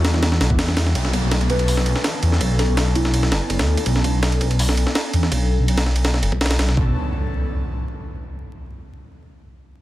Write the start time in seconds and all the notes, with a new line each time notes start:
Already playing: E2 G3 D4 E4 F#4
0.05 snare, ride
0.14 snare
0.23 snare, ride
0.32 snare
0.41 B1, snare, ride
0.50 E2, kick
0.59 snare, ride
0.68 snare
0.77 E2, snare, ride
0.86 snare
0.95 B1 B3 C#4 D4 A4, kick, ride, downlifter
1.05 snare
1.13 kick, ride
1.23 B1
1.31 snare, ride
1.41 ride
1.50 B4, kick, ride
1.59 ride
1.68 open hi-hat
1.77 snare
1.86 ride
1.96 snare
2.04 snare, ride
2.23 E2, ride
2.32 snare
2.41 B1, kick, ride
2.59 A4, snare, ride
2.69 B1
2.77 snare, ride
2.95 E4, kick, ride
3.05 snare
3.14 ride
3.23 snare
3.32 F#1, snare, ride
3.50 F#1, kick, ride
3.59 D2, snare, ride
3.68 D2
3.77 kick, ride
3.86 B1, kick, ride
3.96 snare
4.04 kick, ride
4.14 B1
4.23 snare, ride
4.32 ride
4.41 kick, ride
4.51 ride
4.59 open hi-hat
4.69 snare
4.77 ride
4.87 snare
4.95 snare, ride
5.13 E2, ride
5.23 snare
5.32 B1, kick, ride
5.59 B1
5.68 ride
5.78 snare, ride
5.86 snare
5.96 ride
6.05 snare, ride
6.14 snare
6.22 F#1, ride
6.32 B1, kick
6.41 snare, ride
6.46 snare, ride
6.51 snare, ride
6.59 B1, snare, ride
6.69 snare
6.77 B1 B3 C#4 D4 A4, kick, impact